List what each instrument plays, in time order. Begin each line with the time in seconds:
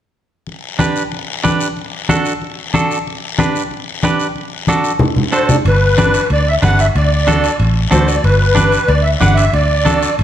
0.47 high conga, long guiro
0.79 clean electric guitar D4 G4 B4, high conga, short guiro
0.96 short guiro
1.12 high conga, long guiro
1.44 clean electric guitar D4 G4 B4, high conga, short guiro
1.60 short guiro
1.76 high conga, long guiro
2.09 clean electric guitar D4 F#4 A4, high conga, short guiro
2.25 short guiro
2.42 high conga, long guiro
2.74 clean electric guitar D4 F#4 A4, high conga, short guiro
2.91 short guiro
3.07 high conga, long guiro
3.38 clean electric guitar D4 G4 B4, high conga, short guiro
3.55 short guiro
3.71 high conga, long guiro
4.03 clean electric guitar D4 G4 B4, high conga, short guiro
4.20 short guiro
4.35 high conga, long guiro
4.67 clean electric guitar D4 F#4 A4, high conga, short guiro
4.84 short guiro
4.99 low conga, long guiro
5.16 low conga
5.32 clean electric guitar D4 F#4 A4, accordion C5, short guiro
5.49 accordion D5, low conga, short guiro
5.65 fingered electric bass G1, accordion B4, high conga, high timbale, long guiro
5.98 clean electric guitar D4 G4 B4, high conga, high timbale, short guiro
6.14 high timbale, short guiro
6.30 fingered electric bass D2, accordion D5, high conga, high timbale, long guiro
6.48 accordion E5
6.62 fingered electric bass G1, clean electric guitar D4 G4 B4, accordion F#5, high conga, high timbale, short guiro
6.79 accordion E5, high timbale, short guiro
6.95 fingered electric bass D2, accordion D5, high conga, high timbale, long guiro
7.27 clean electric guitar D4 F#4 A4, high conga, high timbale, short guiro
7.44 high timbale, short guiro
7.60 fingered electric bass A1, high conga, high timbale, long guiro
7.91 fingered electric bass D2, clean electric guitar D4 F#4 A4, accordion C5, high conga, high timbale, low timbale, short guiro
8.06 accordion D5, high timbale, short guiro
8.24 fingered electric bass G1, accordion B4, high conga, high timbale, long guiro
8.55 clean electric guitar D4 G4 B4, high conga, high timbale, short guiro
8.72 high timbale, short guiro
8.87 fingered electric bass D2, accordion D5, high conga, high timbale, long guiro
9.03 accordion E5
9.20 fingered electric bass G1, clean electric guitar D4 G4 B4, accordion F#5, high conga, high timbale, short guiro
9.34 accordion E5, high timbale, short guiro
9.53 fingered electric bass D2, accordion D5, high conga, high timbale, long guiro
9.85 clean electric guitar D4 F#4 A4, high conga, high timbale, short guiro
10.02 high timbale, short guiro
10.18 fingered electric bass A1, high conga, high timbale, long guiro